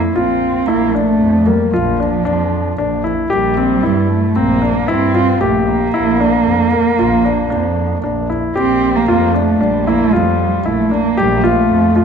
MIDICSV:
0, 0, Header, 1, 4, 480
1, 0, Start_track
1, 0, Tempo, 524934
1, 627, Time_signature, 5, 2, 24, 8
1, 11015, End_track
2, 0, Start_track
2, 0, Title_t, "Grand piano"
2, 0, Program_c, 0, 0
2, 0, Note_on_c, 0, 64, 59
2, 110, Note_off_c, 0, 64, 0
2, 143, Note_on_c, 0, 65, 66
2, 562, Note_off_c, 0, 65, 0
2, 621, Note_on_c, 0, 64, 67
2, 832, Note_off_c, 0, 64, 0
2, 866, Note_on_c, 0, 62, 64
2, 1284, Note_off_c, 0, 62, 0
2, 1342, Note_on_c, 0, 58, 58
2, 1553, Note_off_c, 0, 58, 0
2, 1587, Note_on_c, 0, 65, 67
2, 1796, Note_off_c, 0, 65, 0
2, 1827, Note_on_c, 0, 62, 61
2, 2036, Note_off_c, 0, 62, 0
2, 2059, Note_on_c, 0, 62, 77
2, 2480, Note_off_c, 0, 62, 0
2, 2545, Note_on_c, 0, 62, 66
2, 2755, Note_off_c, 0, 62, 0
2, 2779, Note_on_c, 0, 64, 64
2, 2992, Note_off_c, 0, 64, 0
2, 3017, Note_on_c, 0, 67, 80
2, 3230, Note_off_c, 0, 67, 0
2, 3266, Note_on_c, 0, 60, 68
2, 3475, Note_off_c, 0, 60, 0
2, 3502, Note_on_c, 0, 64, 61
2, 3922, Note_off_c, 0, 64, 0
2, 3985, Note_on_c, 0, 60, 65
2, 4194, Note_off_c, 0, 60, 0
2, 4222, Note_on_c, 0, 62, 60
2, 4433, Note_off_c, 0, 62, 0
2, 4463, Note_on_c, 0, 64, 76
2, 4673, Note_off_c, 0, 64, 0
2, 4704, Note_on_c, 0, 65, 62
2, 4914, Note_off_c, 0, 65, 0
2, 4945, Note_on_c, 0, 67, 68
2, 5363, Note_off_c, 0, 67, 0
2, 5430, Note_on_c, 0, 64, 73
2, 5637, Note_off_c, 0, 64, 0
2, 5671, Note_on_c, 0, 62, 65
2, 6087, Note_off_c, 0, 62, 0
2, 6150, Note_on_c, 0, 58, 62
2, 6357, Note_off_c, 0, 58, 0
2, 6391, Note_on_c, 0, 65, 64
2, 6598, Note_off_c, 0, 65, 0
2, 6627, Note_on_c, 0, 62, 65
2, 6836, Note_off_c, 0, 62, 0
2, 6860, Note_on_c, 0, 62, 70
2, 7280, Note_off_c, 0, 62, 0
2, 7347, Note_on_c, 0, 62, 65
2, 7556, Note_off_c, 0, 62, 0
2, 7586, Note_on_c, 0, 64, 59
2, 7795, Note_off_c, 0, 64, 0
2, 7823, Note_on_c, 0, 67, 69
2, 8242, Note_off_c, 0, 67, 0
2, 8305, Note_on_c, 0, 65, 69
2, 8515, Note_off_c, 0, 65, 0
2, 8544, Note_on_c, 0, 62, 62
2, 8754, Note_off_c, 0, 62, 0
2, 8784, Note_on_c, 0, 62, 66
2, 8993, Note_off_c, 0, 62, 0
2, 9028, Note_on_c, 0, 64, 67
2, 9236, Note_off_c, 0, 64, 0
2, 9261, Note_on_c, 0, 65, 68
2, 9680, Note_off_c, 0, 65, 0
2, 9743, Note_on_c, 0, 64, 64
2, 9953, Note_off_c, 0, 64, 0
2, 9979, Note_on_c, 0, 62, 60
2, 10190, Note_off_c, 0, 62, 0
2, 10218, Note_on_c, 0, 67, 81
2, 10430, Note_off_c, 0, 67, 0
2, 10457, Note_on_c, 0, 65, 75
2, 10877, Note_off_c, 0, 65, 0
2, 10934, Note_on_c, 0, 65, 60
2, 11015, Note_off_c, 0, 65, 0
2, 11015, End_track
3, 0, Start_track
3, 0, Title_t, "Cello"
3, 0, Program_c, 1, 42
3, 132, Note_on_c, 1, 60, 75
3, 609, Note_on_c, 1, 58, 80
3, 623, Note_off_c, 1, 60, 0
3, 852, Note_on_c, 1, 57, 76
3, 866, Note_off_c, 1, 58, 0
3, 1334, Note_on_c, 1, 55, 66
3, 1348, Note_off_c, 1, 57, 0
3, 1574, Note_on_c, 1, 53, 64
3, 1587, Note_off_c, 1, 55, 0
3, 2781, Note_off_c, 1, 53, 0
3, 3031, Note_on_c, 1, 55, 77
3, 3749, Note_on_c, 1, 57, 70
3, 3763, Note_off_c, 1, 55, 0
3, 3988, Note_on_c, 1, 58, 78
3, 4002, Note_off_c, 1, 57, 0
3, 4471, Note_on_c, 1, 60, 87
3, 4485, Note_off_c, 1, 58, 0
3, 4936, Note_on_c, 1, 57, 73
3, 4950, Note_off_c, 1, 60, 0
3, 5188, Note_on_c, 1, 58, 86
3, 5201, Note_off_c, 1, 57, 0
3, 7347, Note_off_c, 1, 58, 0
3, 7830, Note_on_c, 1, 60, 88
3, 8192, Note_on_c, 1, 58, 76
3, 8205, Note_off_c, 1, 60, 0
3, 8547, Note_on_c, 1, 57, 69
3, 8561, Note_off_c, 1, 58, 0
3, 8782, Note_on_c, 1, 55, 70
3, 8796, Note_off_c, 1, 57, 0
3, 9024, Note_on_c, 1, 58, 78
3, 9038, Note_off_c, 1, 55, 0
3, 9269, Note_on_c, 1, 55, 71
3, 9283, Note_off_c, 1, 58, 0
3, 9744, Note_on_c, 1, 57, 75
3, 9757, Note_off_c, 1, 55, 0
3, 9985, Note_off_c, 1, 57, 0
3, 9991, Note_on_c, 1, 58, 76
3, 10236, Note_on_c, 1, 55, 72
3, 10250, Note_off_c, 1, 58, 0
3, 10396, Note_on_c, 1, 58, 57
3, 10410, Note_off_c, 1, 55, 0
3, 10474, Note_on_c, 1, 57, 77
3, 10488, Note_off_c, 1, 58, 0
3, 11015, Note_off_c, 1, 57, 0
3, 11015, End_track
4, 0, Start_track
4, 0, Title_t, "Double bass"
4, 0, Program_c, 2, 43
4, 0, Note_on_c, 2, 41, 67
4, 118, Note_off_c, 2, 41, 0
4, 146, Note_on_c, 2, 34, 64
4, 596, Note_off_c, 2, 34, 0
4, 630, Note_on_c, 2, 34, 79
4, 1078, Note_off_c, 2, 34, 0
4, 1108, Note_on_c, 2, 41, 67
4, 1332, Note_off_c, 2, 41, 0
4, 1585, Note_on_c, 2, 34, 87
4, 2036, Note_off_c, 2, 34, 0
4, 2068, Note_on_c, 2, 41, 63
4, 2517, Note_off_c, 2, 41, 0
4, 2547, Note_on_c, 2, 34, 78
4, 2996, Note_off_c, 2, 34, 0
4, 3028, Note_on_c, 2, 34, 78
4, 3477, Note_off_c, 2, 34, 0
4, 3502, Note_on_c, 2, 43, 72
4, 3729, Note_off_c, 2, 43, 0
4, 3988, Note_on_c, 2, 34, 85
4, 4436, Note_off_c, 2, 34, 0
4, 4463, Note_on_c, 2, 43, 71
4, 4914, Note_off_c, 2, 43, 0
4, 4943, Note_on_c, 2, 34, 75
4, 5394, Note_off_c, 2, 34, 0
4, 5421, Note_on_c, 2, 34, 89
4, 5873, Note_off_c, 2, 34, 0
4, 5901, Note_on_c, 2, 41, 63
4, 6128, Note_off_c, 2, 41, 0
4, 6385, Note_on_c, 2, 34, 83
4, 6835, Note_off_c, 2, 34, 0
4, 6868, Note_on_c, 2, 41, 64
4, 7316, Note_off_c, 2, 41, 0
4, 7350, Note_on_c, 2, 34, 71
4, 7798, Note_off_c, 2, 34, 0
4, 7827, Note_on_c, 2, 34, 78
4, 8276, Note_off_c, 2, 34, 0
4, 8310, Note_on_c, 2, 41, 67
4, 8758, Note_off_c, 2, 41, 0
4, 8790, Note_on_c, 2, 34, 81
4, 9237, Note_off_c, 2, 34, 0
4, 9266, Note_on_c, 2, 41, 65
4, 9715, Note_off_c, 2, 41, 0
4, 9747, Note_on_c, 2, 34, 75
4, 9971, Note_off_c, 2, 34, 0
4, 10225, Note_on_c, 2, 34, 88
4, 10674, Note_off_c, 2, 34, 0
4, 10699, Note_on_c, 2, 41, 69
4, 11015, Note_off_c, 2, 41, 0
4, 11015, End_track
0, 0, End_of_file